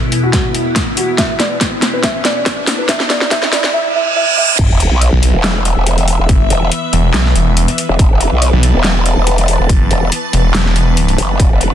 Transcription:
0.00 3.70 E2 medium
0.00 3.70 B2 medium
0.00 3.70 B3 medium
0.00 3.70 E4 medium
0.00 riser medium
0.12 closed hi-hat medium
0.23 0.46 F#4 medium
0.33 kick loud
0.33 snare medium
0.33 closed hi-hat medium
0.55 closed hi-hat soft
0.76 kick medium
0.76 snare medium
0.76 closed hi-hat medium
0.97 1.13 F#4 medium
0.97 open hi-hat medium
1.18 1.34 E5 medium
1.18 kick loud
1.18 snare medium
1.18 closed hi-hat medium
1.39 1.55 D5 medium
1.39 snare medium
1.39 closed hi-hat medium
1.61 kick medium
1.61 snare medium
1.61 closed hi-hat medium
1.82 snare medium
1.82 closed hi-hat medium
1.94 2.02 B4 medium
2.03 2.19 E5 medium
2.03 kick loud
2.03 snare medium
2.03 closed hi-hat medium
2.25 2.41 D5 medium
2.25 snare medium
2.25 closed hi-hat soft
2.46 kick loud
2.46 snare medium
2.46 closed hi-hat medium
2.67 snare medium
2.67 open hi-hat medium
2.78 2.87 B4 medium
2.88 3.04 E5 medium
2.88 kick loud
2.88 snare medium
2.88 closed hi-hat medium
3.00 snare medium
3.10 3.26 D5 medium
3.10 snare medium
3.10 closed hi-hat soft
3.21 snare medium
3.31 3.47 E5 loud
3.31 kick loud
3.31 snare medium
3.31 closed hi-hat medium
3.43 snare medium
3.52 3.68 D5 medium
3.52 snare loud
3.52 open hi-hat medium
3.64 snare medium
3.74 3.90 E5 loud
3.74 reverse cymbal medium
3.95 4.11 E5 loud
4.16 4.32 E5 loud
4.37 4.53 E5 loud
4.59 4.68 E1 loud
4.59 11.74 E3 medium
4.59 11.74 B3 medium
4.59 11.74 B4 medium
4.59 7.98 E5 medium
4.59 kick loud
4.59 closed hi-hat medium
4.59 crash loud
4.59 sub drop medium
4.70 4.90 E1 loud
4.80 closed hi-hat medium
4.91 5.11 B1 loud
5.01 closed hi-hat medium
5.13 5.32 B1 loud
5.23 closed hi-hat medium
5.34 5.75 E1 loud
5.44 snare loud
5.44 clap medium
5.44 closed hi-hat medium
5.65 closed hi-hat medium
5.76 6.17 E1 loud
5.87 closed hi-hat medium
5.98 closed hi-hat soft
6.08 open hi-hat medium
6.19 6.27 E1 loud
6.29 6.49 F#1 loud
6.29 kick loud
6.29 closed hi-hat medium
6.50 6.70 E1 medium
6.50 closed hi-hat medium
6.72 closed hi-hat medium
6.93 7.12 E1 medium
6.93 closed hi-hat medium
7.14 7.34 B1 loud
7.14 snare loud
7.14 clap loud
7.14 closed hi-hat medium
7.26 snare soft
7.35 7.66 E1 medium
7.35 closed hi-hat medium
7.57 closed hi-hat medium
7.68 closed hi-hat soft
7.78 open hi-hat medium
7.89 7.98 E1 loud
7.99 8.09 E1 loud
7.99 11.38 A5 medium
7.99 kick loud
7.99 closed hi-hat medium
8.11 8.30 E1 loud
8.21 closed hi-hat medium
8.32 8.51 B1 loud
8.42 closed hi-hat medium
8.53 8.73 B1 loud
8.63 closed hi-hat medium
8.74 9.15 E1 loud
8.84 snare loud
8.84 clap medium
8.84 closed hi-hat medium
9.06 closed hi-hat soft
9.17 9.58 E1 loud
9.27 closed hi-hat medium
9.38 closed hi-hat soft
9.48 open hi-hat medium
9.59 9.68 E1 loud
9.69 9.89 F#1 loud
9.69 kick loud
9.69 closed hi-hat medium
9.91 10.10 E1 loud
9.91 closed hi-hat soft
10.12 closed hi-hat medium
10.33 10.53 E1 medium
10.33 closed hi-hat medium
10.54 11.17 E1 medium
10.54 snare loud
10.54 clap medium
10.54 closed hi-hat medium
10.66 snare soft
10.76 closed hi-hat soft
10.97 closed hi-hat medium
11.08 closed hi-hat soft
11.18 11.38 F#1 medium
11.18 open hi-hat medium
11.40 11.49 E1 medium
11.40 11.74 E5 medium
11.40 kick loud
11.40 closed hi-hat medium
11.51 11.70 E1 medium
11.61 closed hi-hat medium

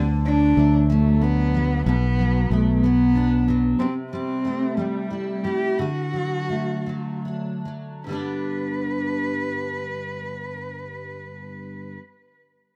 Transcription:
0.00 0.53 D2 medium
0.00 1.86 D3 medium
0.00 1.21 D4 medium
0.25 0.89 F#3 soft
0.25 0.86 D4 medium
0.57 1.82 D2 medium
0.57 1.92 A3 soft
0.90 1.54 F#3 medium
0.90 1.23 A3 medium
1.21 1.86 B3 medium
1.21 1.92 D4 soft
1.54 1.93 F#3 soft
1.86 2.46 B1 medium
1.86 3.78 B2 medium
1.86 2.53 B3 medium
2.19 2.83 F#3 soft
2.50 3.74 B1 medium
2.50 2.85 A3 medium
2.50 3.85 B3 soft
2.83 3.47 F#3 soft
2.83 3.55 B3 medium
3.15 3.85 D4 medium
3.48 3.86 F#3 soft
3.79 5.77 C3 medium
3.79 3.93 C4 medium
4.11 4.76 G3 soft
4.11 4.78 C4 medium
4.45 5.84 A3 soft
4.76 5.45 G3 medium
4.76 5.43 G3 soft
5.10 5.84 E4 soft
5.44 5.84 G3 soft
5.44 5.80 G4 medium
5.78 8.06 D3 medium
5.78 7.25 F#4 medium
6.13 6.85 F#3 soft
6.49 8.10 A3 soft
6.86 7.64 F#3 soft
7.25 8.12 D4 soft
7.65 8.08 F#3 soft
8.04 11.95 G2 soft
8.04 11.97 D3 medium
8.04 11.93 B4 medium
8.08 11.99 G3 medium
8.08 12.01 B3 medium
8.08 12.03 D4 medium

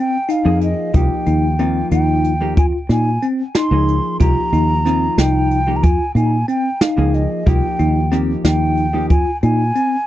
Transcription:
0.00 0.16 C4 medium
0.00 0.33 G5 medium
0.29 0.68 D#4 medium
0.29 0.63 F5 medium
0.29 closed hi-hat medium
0.45 0.73 F2 medium
0.45 0.90 F3 medium
0.45 0.90 A#3 soft
0.45 0.90 D#4 medium
0.45 0.90 G#4 medium
0.61 0.98 D#5 medium
0.61 closed hi-hat medium
0.94 1.08 C2 medium
0.94 1.54 F3 medium
0.94 1.54 A#3 soft
0.94 1.54 D#4 medium
0.94 1.13 F4 medium
0.94 1.54 G4 medium
0.94 1.92 G5 medium
0.94 kick medium
0.94 closed hi-hat medium
1.26 1.82 D#2 medium
1.26 1.46 D#4 medium
1.26 closed hi-hat medium
1.59 2.34 F3 medium
1.59 2.34 A#3 medium
1.59 1.79 C4 medium
1.59 2.34 D#4 soft
1.59 2.34 F4 medium
1.59 closed hi-hat soft
1.91 2.57 D#2 medium
1.91 2.31 D#4 medium
1.91 2.54 G5 medium
1.91 closed hi-hat medium
2.24 closed hi-hat soft
2.41 2.57 F3 medium
2.41 2.58 A#3 medium
2.41 2.58 D#4 soft
2.41 2.58 G4 medium
2.57 2.71 F2 medium
2.57 2.77 F4 medium
2.57 2.66 G#5 medium
2.57 kick medium
2.57 closed hi-hat medium
2.89 3.17 A#2 medium
2.89 3.09 D#4 medium
2.89 3.26 G#5 medium
2.89 snare soft
2.89 closed hi-hat medium
3.22 3.42 C4 medium
3.22 closed hi-hat medium
3.55 3.94 D#4 medium
3.55 4.17 C6 medium
3.55 snare loud
3.55 closed hi-hat medium
3.71 3.99 C#2 medium
3.71 4.16 F3 medium
3.71 4.17 A#3 soft
3.71 4.17 D#4 medium
3.71 4.17 G#4 medium
3.88 closed hi-hat soft
4.20 4.34 C2 medium
4.20 4.80 F3 medium
4.20 4.80 A#3 soft
4.20 4.80 D#4 soft
4.20 4.40 F4 medium
4.20 4.81 G4 medium
4.20 5.20 A#5 medium
4.20 kick medium
4.20 closed hi-hat medium
4.53 5.08 D#2 medium
4.53 4.73 D#4 medium
4.53 closed hi-hat medium
4.86 5.60 F3 medium
4.86 5.60 A#3 soft
4.86 5.05 C4 medium
4.86 5.61 D#4 medium
4.86 5.61 F4 medium
4.86 snare soft
4.86 closed hi-hat soft
5.18 5.84 C2 medium
5.18 5.57 D#4 medium
5.18 5.78 G5 medium
5.18 snare medium
5.18 closed hi-hat medium
5.51 closed hi-hat soft
5.67 5.84 F3 medium
5.67 5.84 A#3 soft
5.67 5.84 D#4 medium
5.67 5.84 G4 medium
5.76 5.85 A#5 medium
5.83 5.98 F2 medium
5.83 6.03 F4 medium
5.83 6.16 G#5 medium
5.83 kick medium
5.83 closed hi-hat medium
6.15 6.43 A#2 medium
6.15 6.36 D#4 medium
6.15 6.47 G#5 medium
6.15 closed hi-hat medium
6.48 6.68 C4 medium
6.48 6.83 G5 medium
6.48 closed hi-hat medium
6.81 7.21 D#4 medium
6.81 7.16 F5 medium
6.81 snare loud
6.81 closed hi-hat medium
6.97 7.26 C#2 medium
6.97 7.43 F3 medium
6.97 7.43 A#3 medium
6.97 7.43 D#4 medium
6.97 7.43 G#4 medium
7.14 7.50 D#5 medium
7.14 closed hi-hat soft
7.46 7.61 C2 medium
7.46 8.06 F3 medium
7.46 8.06 A#3 medium
7.46 8.07 D#4 soft
7.46 7.66 F4 medium
7.46 8.07 G4 medium
7.46 8.19 G5 medium
7.46 kick medium
7.46 closed hi-hat medium
7.79 8.35 D#2 medium
7.79 7.99 D#4 medium
7.79 closed hi-hat medium
8.12 8.87 F3 medium
8.12 8.87 A#3 medium
8.12 8.32 C4 medium
8.12 8.87 D#4 soft
8.12 8.87 G4 medium
8.12 snare soft
8.12 closed hi-hat soft
8.44 9.10 D#2 medium
8.44 8.84 D#4 medium
8.44 9.06 G5 medium
8.44 snare loud
8.44 closed hi-hat medium
8.77 closed hi-hat soft
8.93 9.10 F3 medium
8.93 9.10 A#3 soft
8.93 9.10 D#4 medium
8.93 9.11 G4 medium
9.10 9.24 F2 medium
9.10 9.30 F4 medium
9.10 9.41 G#5 medium
9.10 kick medium
9.10 closed hi-hat medium
9.43 9.71 A#2 medium
9.43 9.63 D#4 medium
9.43 10.07 G#5 medium
9.43 closed hi-hat medium
9.75 9.95 C4 medium
9.75 closed hi-hat medium

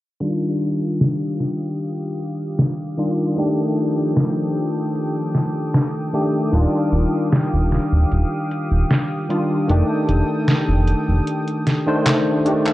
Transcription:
0.21 2.93 D#3 medium
0.21 2.93 G3 medium
0.21 2.94 D4 medium
0.21 2.95 F4 medium
0.21 3.34 G4 medium
0.21 3.34 F5 medium
0.21 12.73 D6 medium
0.21 3.34 D#6 medium
0.21 closed hi-hat medium
0.61 closed hi-hat medium
1.01 snare loud
1.40 snare medium
1.40 closed hi-hat medium
1.80 closed hi-hat medium
2.19 closed hi-hat medium
2.59 snare loud
2.59 closed hi-hat medium
2.97 3.33 D#3 medium
2.97 3.33 G3 medium
2.97 3.33 D4 medium
2.97 3.33 F4 medium
2.97 closed hi-hat medium
3.36 6.09 D#3 medium
3.36 6.51 F3 medium
3.36 6.09 A3 medium
3.36 6.10 D4 medium
3.36 6.10 G4 medium
3.36 6.50 A4 medium
3.36 6.51 G5 medium
3.36 9.66 D#6 medium
3.36 closed hi-hat medium
3.77 closed hi-hat medium
4.17 snare loud
4.17 closed hi-hat medium
4.56 closed hi-hat medium
4.95 closed hi-hat medium
5.35 snare medium
5.35 closed hi-hat medium
5.74 snare loud
5.74 closed hi-hat medium
6.13 6.48 D#3 medium
6.13 6.49 A3 medium
6.13 6.49 D4 medium
6.13 6.49 G4 medium
6.13 closed hi-hat medium
6.52 6.67 D#1 medium
6.52 9.24 D#3 medium
6.52 9.25 G3 medium
6.52 9.25 D4 medium
6.52 9.26 F4 medium
6.52 9.66 G4 medium
6.52 9.66 F5 medium
6.52 closed hi-hat medium
6.92 7.06 D#1 medium
6.92 closed hi-hat medium
7.33 snare loud
7.33 closed hi-hat medium
7.53 7.79 D#1 medium
7.72 snare medium
7.72 closed hi-hat medium
7.92 8.05 D#1 medium
8.11 8.25 D#1 medium
8.11 closed hi-hat medium
8.51 closed hi-hat medium
8.71 8.84 D#1 medium
8.91 snare loud
8.91 closed hi-hat medium
9.29 9.64 D#3 medium
9.29 9.64 G3 medium
9.29 9.65 D4 medium
9.29 9.65 F4 medium
9.29 closed hi-hat medium
9.68 9.83 F1 medium
9.68 11.82 D#3 medium
9.68 11.83 A3 medium
9.68 11.83 D4 medium
9.68 11.84 G4 medium
9.68 12.73 A4 medium
9.68 12.73 G5 medium
9.68 12.73 D#6 medium
9.68 closed hi-hat medium
10.09 10.23 F1 medium
10.09 closed hi-hat medium
10.48 snare loud
10.48 closed hi-hat medium
10.69 10.95 F1 medium
10.88 closed hi-hat medium
11.08 11.21 F1 medium
11.27 closed hi-hat medium
11.48 closed hi-hat soft
11.67 snare medium
11.67 closed hi-hat medium
11.86 12.41 D#3 medium
11.86 12.41 A3 medium
11.86 12.41 D4 medium
11.86 12.42 C5 loud
12.06 snare loud
12.06 clap loud
12.06 closed hi-hat medium
12.45 12.73 D#3 medium
12.45 12.73 A3 medium
12.45 12.73 D4 medium
12.45 12.73 G4 medium
12.45 closed hi-hat medium
12.66 clap medium

